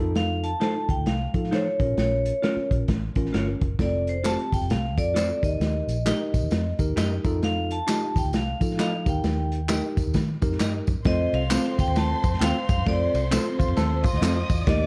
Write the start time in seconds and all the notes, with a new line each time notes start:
Already playing: F2 D#4 A5
0.00 F4 A4
0.15 F5, snare, closed hi-hat
0.44 A5, closed hi-hat
0.60 D#4 F4 A4 C5 A5, snare, closed hi-hat
0.89 D#2 G5, kick, closed hi-hat
0.97 D2
1.06 C2 F5, snare, closed hi-hat
1.34 F3 D#4 F4 A4, kick, closed hi-hat
1.44 snare
1.51 D#4 A4 C5 C#5, snare, closed hi-hat
1.79 A#1 C#4 F4 A#4, kick, closed hi-hat
1.97 A#1 C#5, snare, closed hi-hat
2.26 closed hi-hat
2.42 C#4 F4 A#4 C#5, snare, closed hi-hat
2.56 muted fingered electric bass stroke
2.71 A#1, kick, closed hi-hat
2.88 A1, kick, snare, closed hi-hat
3.15 A1 C#4 F4 A#4, kick, closed hi-hat
3.25 snare
3.33 G1 F4 A#4 C#5, snare, closed hi-hat
3.61 F#1, kick, closed hi-hat
3.79 F1 C4 F4 A4 D5, kick, snare, closed hi-hat, tambourine
4.07 C5, closed hi-hat
4.24 C4 F4 F#4 A4 C5 A5, snare, clap, closed hi-hat, tambourine
4.31 G4
4.39 closed hi-hat
4.52 G1 G5, kick, closed hi-hat, tambourine
4.61 F1, closed hi-hat
4.70 C2 F5, snare, closed hi-hat, tambourine
4.97 F2 C4 F4 A4 D5, kick, closed hi-hat, tambourine
5.14 F4 A4 C5, snare, clap, closed hi-hat, tambourine
5.42 D#2 D#4 G4 A#4 D#5, kick, closed hi-hat, tambourine
5.60 D#2, snare, closed hi-hat, tambourine
5.87 A#1, closed hi-hat, tambourine
6.06 D#4 G4 A#4 D#5, snare, clap, closed hi-hat, tambourine
6.34 A#1, kick, closed hi-hat, tambourine
6.42 D#2
6.51 F2, snare, closed hi-hat, tambourine
6.79 D#2 D#4 G4 A#4, kick, closed hi-hat, tambourine
6.96 F#2 G4 A#4 D#5, snare, clap, closed hi-hat, tambourine
7.24 F2 D#4 F4 A4, kick, closed hi-hat, tambourine
7.43 F5, snare, closed hi-hat
7.71 A5, closed hi-hat
7.87 D#4 F4 G4 A4 D#5 A5, snare, clap, closed hi-hat, tambourine
8.16 D#2 G5, kick, closed hi-hat, tambourine
8.24 D2, closed hi-hat
8.33 C2 F5, snare, closed hi-hat, tambourine
8.60 F3 D#4 F4 A4, kick, closed hi-hat, tambourine
8.71 snare
8.78 F4 A4 D#5 F5, snare, clap, closed hi-hat, tambourine
9.06 D#2 D#4 G4 A#4 G5, kick, closed hi-hat, tambourine
9.24 D#2, snare, closed hi-hat, tambourine
9.52 closed hi-hat
9.68 D#4 G4 A#4 D#5, snare, clap, closed hi-hat, tambourine
9.97 F2, kick, closed hi-hat, tambourine
10.06 D#2
10.14 D#3, kick, snare, closed hi-hat, tambourine
10.42 F2 D#4 G4 A#4, kick, closed hi-hat, tambourine
10.51 snare
10.59 G2 G4 A#4 D#5, snare, clap, closed hi-hat, tambourine
10.87 F#2, kick, closed hi-hat, tambourine
11.04 F2 C4 F4 A4 C5 D#5 C6, kick, snare, ride, tambourine
11.33 C2 F5, ride
11.50 C4 F4 A4 C5, snare, clap, ride, tambourine
11.65 ride
11.79 D2 G5, kick, ride, tambourine
11.87 D#2, ride
11.96 A5, snare, ride, tambourine
12.24 F2, kick, ride, tambourine
12.33 snare
12.39 D#2 C4 F4 A4 F5 G5, snare, clap, ride, tambourine
12.69 G2 F5, kick, ride, tambourine
12.78 F#2
12.86 F2 C4 F4 A4 C5 D5, kick, snare, ride, tambourine
13.14 C2 C5, ride, tambourine
13.31 C4 F4 A4 B4, snare, clap, ride, tambourine
13.38 C5
13.59 D#2 F4, kick, ride, tambourine
13.68 F2, ride
13.76 D#2 A4, snare, ride, tambourine
14.04 F4 D#5 D#6, kick, ride, tambourine
14.13 D2, snare
14.21 F2 C4 F4 A4, snare, clap, ride, tambourine
14.49 E2, kick, ride, tambourine
14.66 D#2 A#3 D#4 G4 A#4 D5 D#5 D6, kick, snare, ride, tambourine